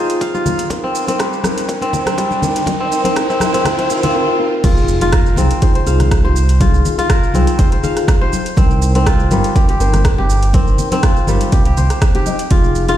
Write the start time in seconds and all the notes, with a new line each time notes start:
Already playing: C4 D#4 F4 G#4 C5, riser
0.10 closed hi-hat, shaker
0.21 F5, kick, closed hi-hat, shaker
0.34 D#4 F4 G4, muted conga, shaker
0.46 high conga, low conga, shaker
0.59 closed hi-hat, shaker
0.70 C4 D#4 A#4, kick, closed hi-hat, muted conga, high conga, shaker
0.84 C4
0.95 shaker
1.07 C4 D#4 A#4, closed hi-hat, muted conga, shaker
1.19 G3, kick, cross-stick, closed hi-hat, shaker
1.33 shaker
1.44 C4 D#4 A#4, cross-stick, muted conga, high conga, shaker
1.58 closed hi-hat, shaker
1.69 C4 D#4 A#4, kick, closed hi-hat, shaker
1.82 C4, closed hi-hat, muted conga
1.93 kick, low conga, shaker
2.06 C4 D#4 A#4, cross-stick, closed hi-hat, high conga, shaker
2.18 G3, kick, closed hi-hat, shaker
2.31 muted conga, shaker
2.42 C4 D#4 A#4, low conga, shaker
2.56 closed hi-hat, shaker
2.66 C4 D#4 A#4, kick, closed hi-hat, muted conga, high conga, low conga, shaker
2.80 C4
2.92 shaker
3.04 C4 D#4 A#4, closed hi-hat, muted conga, high conga, shaker
3.16 C4 D#4 A#4, kick, cross-stick, closed hi-hat, shaker
3.29 C4, shaker
3.40 cross-stick, muted conga, high conga, shaker
3.54 C4 D#4 A#4, closed hi-hat, shaker
3.65 C4 D#4, kick, cross-stick, closed hi-hat, swell, low conga, shaker
3.79 C4, closed hi-hat, muted conga
3.90 C4 D#4 A#4, shaker
4.03 C4, closed hi-hat, low conga, shaker
4.15 C4 D#4 A#4
4.39 C4 D#4 A#4
4.64 F1 D#4 F4 G#4, kick, closed hi-hat, crash, impact, muted conga, high conga, shaker
4.77 shaker
4.88 shaker
5.01 D#4 F4 G#4, closed hi-hat, muted conga, shaker
5.13 A#4, kick, cross-stick, closed hi-hat, shaker
5.26 shaker
5.36 C2 C4 D#4 F4 G#4, muted conga, high conga, low conga, shaker
5.51 closed hi-hat, shaker
5.62 D#4 F4 G#4 C5, kick, closed hi-hat, shaker
5.75 C5, closed hi-hat, muted conga
5.86 C2 D#4 F4 G#4 F5, shaker
6.00 cross-stick, closed hi-hat, high conga, low conga, shaker
6.11 kick, cross-stick, closed hi-hat, shaker
6.25 D#4 F4 G4 C5, muted conga
6.36 shaker
6.49 closed hi-hat, shaker
6.61 D#4 F4 G#4, kick, closed hi-hat, muted conga, high conga, shaker
6.74 shaker
6.85 low conga, shaker
6.98 D#4 F4 G#4, closed hi-hat, muted conga, high conga, shaker
7.10 A#4, kick, cross-stick, closed hi-hat, shaker
7.23 shaker
7.34 C2 C4 D#4 F4 G#4, muted conga, high conga, low conga, shaker
7.47 closed hi-hat, shaker
7.59 F1 D#4 F4 G#4 C5, kick, closed hi-hat, shaker
7.72 C5, closed hi-hat, muted conga
7.83 D#4 F4 G#4 F5, low conga, shaker
7.97 cross-stick, closed hi-hat, shaker
8.08 kick, cross-stick, closed hi-hat, shaker
8.21 D#4 F4 G4 C5, muted conga
8.33 high conga, shaker
8.46 closed hi-hat, shaker
8.57 C2 C4 D#4 A#4, kick, closed hi-hat, muted conga, high conga, shaker
8.71 shaker
8.82 shaker
8.95 C4 D#4 A#4, closed hi-hat, muted conga, shaker
9.06 F4, kick, cross-stick, closed hi-hat, shaker
9.20 shaker
9.31 G1 G3 C4 D#4 A#4, muted conga, high conga, low conga, shaker
9.44 closed hi-hat, shaker
9.55 C4 D#4 G4 A#4, kick, closed hi-hat, shaker
9.68 G4, closed hi-hat, muted conga
9.80 G1 C4 D#4 A#4 C5, shaker
9.92 cross-stick, closed hi-hat, high conga, low conga, shaker
10.05 kick, cross-stick, closed hi-hat, shaker
10.18 C4 D#4 G4, muted conga
10.30 shaker
10.43 closed hi-hat, shaker
10.53 C4 D#4 A#4, kick, closed hi-hat, muted conga, high conga, shaker
10.67 shaker
10.78 low conga, shaker
10.92 C4 D#4 A#4, closed hi-hat, muted conga, high conga, shaker
11.03 F4, kick, cross-stick, closed hi-hat, shaker
11.16 shaker
11.27 G1 G3 C4 D#4 A#4, muted conga, high conga, low conga, shaker
11.41 closed hi-hat, shaker
11.52 C2 C4 D#4 G4 A#4, kick, closed hi-hat, shaker
11.65 G4, closed hi-hat, muted conga
11.77 C2 C5, low conga, shaker
11.90 cross-stick, closed hi-hat, shaker
12.02 kick, cross-stick, closed hi-hat, shaker
12.15 C4 D#4 G4, closed hi-hat, muted conga
12.26 C4 D#4 D#5, high conga, shaker
12.39 closed hi-hat, shaker
12.51 F1 D#4 F4 G#4, kick, closed hi-hat, muted conga, high conga, shaker
12.64 shaker
12.75 shaker
12.88 D#4 F4 G#4, closed hi-hat, muted conga, shaker